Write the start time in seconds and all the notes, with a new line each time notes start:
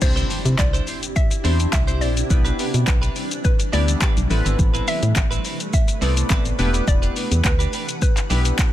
0.01 C2 C3 C4 D4 E4 G4 C5, muted clean electric guitar stroke, kick, crash, impact, shaker
0.16 D4 E4 C5, closed hi-hat, shaker
0.29 D4 E4 C5, open hi-hat, shaker
0.45 C3, muted clean electric guitar stroke, closed hi-hat, shaker
0.59 C2 D5, muted clean electric guitar stroke, kick, clap, shaker
0.73 D4 E4 C5, closed hi-hat, shaker
0.87 D4 E4 C5, open hi-hat, shaker
1.02 muted clean electric guitar stroke, closed hi-hat, shaker
1.15 E5, muted clean electric guitar stroke, kick, shaker
1.31 muted clean electric guitar stroke, closed hi-hat, shaker
1.44 E2 C4 D4 E4 G4 C5, open hi-hat, shaker
1.59 muted clean electric guitar stroke, closed hi-hat, shaker
1.73 C2 E5, muted clean electric guitar stroke, kick, clap, shaker
1.87 D4 E4 C5, closed hi-hat, shaker
2.01 A#1 D4 E4 C5 D5, open hi-hat, shaker
2.16 muted clean electric guitar stroke, closed hi-hat, shaker
2.30 B1 E3 G3 B3 D4 E4 G4 B4, muted clean electric guitar stroke, kick, shaker
2.45 D4 G4 B4, closed hi-hat, shaker
2.58 D4 G4 B4, open hi-hat, shaker
2.73 B2, muted clean electric guitar stroke, closed hi-hat, shaker
2.87 B1 B4, kick, clap, shaker
3.02 D4 G4 B4, closed hi-hat, shaker
3.15 D4 G4 B4, open hi-hat, shaker
3.31 muted clean electric guitar stroke, closed hi-hat, shaker
3.44 B4, muted clean electric guitar stroke, kick, shaker
3.59 muted clean electric guitar stroke, closed hi-hat, shaker
3.72 D2 B3 D4 E4 G4 B4 D5, open hi-hat, shaker
3.88 muted clean electric guitar stroke, closed hi-hat, shaker
4.01 D4 G4 B4, kick, clap, shaker
4.16 B1, muted clean electric guitar stroke, closed hi-hat, shaker
4.30 A1 C3 A3 B3 C4 E4 A4 B4, muted clean electric guitar stroke, open hi-hat, shaker
4.45 G#1 C4 E4 B4, closed hi-hat, shaker
4.59 A1, muted clean electric guitar stroke, kick, shaker
4.74 C4 E4 B4, closed hi-hat, shaker
4.87 C4 E4 B4 E5, open hi-hat, shaker
5.02 A2, muted clean electric guitar stroke, closed hi-hat, shaker
5.16 A1, muted clean electric guitar stroke, kick, clap, shaker
5.31 C4 E4 B4, closed hi-hat, shaker
5.44 C4 E4 B4, open hi-hat, shaker
5.60 muted clean electric guitar stroke, closed hi-hat, shaker
5.73 E5, muted clean electric guitar stroke, kick, shaker
5.88 muted clean electric guitar stroke, closed hi-hat, shaker
6.01 C2 B3 C4 E4 A4 B4 D5, open hi-hat, shaker
6.16 muted clean electric guitar stroke, closed hi-hat, shaker
6.30 A1 C4 E4 B4, kick, clap, shaker
6.45 muted clean electric guitar stroke, closed hi-hat, shaker
6.59 E1 E3 B3 D4 E4 G4 B4 F#5, muted clean electric guitar stroke, open hi-hat, shaker
6.73 D4 G4 B4, closed hi-hat, shaker
6.87 E1 D5, kick, shaker
7.02 D4 G4 B4, closed hi-hat, shaker
7.16 D4 G4 B4, open hi-hat, shaker
7.31 E2, muted clean electric guitar stroke, closed hi-hat, shaker
7.44 D2 B4, muted clean electric guitar stroke, kick, clap, shaker
7.59 D4 G4 B4, closed hi-hat, shaker
7.72 D4 G4 B4, open hi-hat, shaker
7.88 muted clean electric guitar stroke, closed hi-hat, shaker
8.01 B4, muted clean electric guitar stroke, kick, shaker
8.16 muted clean electric guitar stroke, clap, closed hi-hat, shaker
8.30 B1 B3 D4 E4 G4 B4, open hi-hat, shaker
8.45 muted clean electric guitar stroke, closed hi-hat, shaker
8.58 muted clean electric guitar stroke, kick, clap, shaker